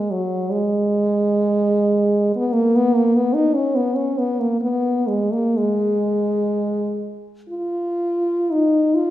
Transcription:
french horn
Already playing: G#3
0.11 F#3
0.52 G#3
2.35 B3
2.53 A#3
2.76 B3
2.94 A#3
3.16 B3
3.34 D#4
3.54 C#4
3.76 B3
3.95 C#4
4.18 B3
4.40 A#3
4.61 B3
5.08 G#3
5.33 A#3
5.57 G#3
7.49 F4
8.52 D#4
8.95 F4

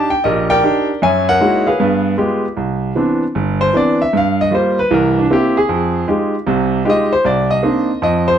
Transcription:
grand piano
Already playing: D4 D#4 G4
0.10 G5
0.24 A#1 G4 A#4 D#5
0.50 A#4 D5 G5
0.63 D4 D#4 G4
1.02 F#2 C#5 E5 G#5
1.29 A#4 C#5 F#5
1.40 G#3 A#3 D#4 E4 F#4
1.67 G#4 B4 F5
1.80 G2 B3
2.18 G#3 B3 F4 G4
2.57 C2
2.95 E3 B3 C4 D4
3.35 G1
3.61 C5
3.73 E3 B3 C4 D4 D5
4.02 E5
4.13 G2 F5
4.41 D#5
4.51 G3 A#3 F4 C5
4.79 B4
4.91 C2 E3 A#4
5.19 D4
5.30 A#3 C4 E4 G4
5.57 G#4
5.69 F2
6.08 G#3 D#4 F4 G4
6.47 C2 C3
6.85 G#3 D#4 F4 G4
6.90 D#5
7.13 C5
7.25 C2 D5
7.51 D#5
7.63 A#3 C4 D4 D#4
8.02 F2 D#5
8.28 C5

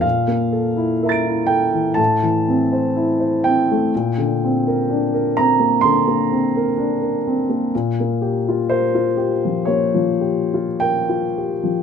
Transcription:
grand piano
0.01 A#2 F5
0.28 A#3
0.52 A4
0.77 E4
1.03 A#4 E5 A#5
1.09 A6 D7
1.27 E4
1.47 A4 G5
1.74 E3
1.94 A2 A5
2.23 E3
2.48 C4
2.73 C5
2.96 E4
3.20 C5
3.44 C4 G5
3.71 A3
3.95 A#2
4.18 D3
4.44 C4
4.67 A#4
4.90 D4
5.14 A#4
5.37 C4 A#5
5.60 A#3
5.81 D3 C6
6.07 A#3
6.32 C4
6.57 A#4
6.78 D4
7.02 A#4
7.27 C4
7.49 A#3
7.75 A#2
8.00 A#3
8.22 G4
8.49 F4
8.70 A#4 C5
8.95 F4
9.17 G4
9.45 F3
9.65 A#3 C#5
9.95 F3
10.21 G4
10.54 F4
10.80 A#4 G5
11.09 F4
11.38 G4
11.63 F3

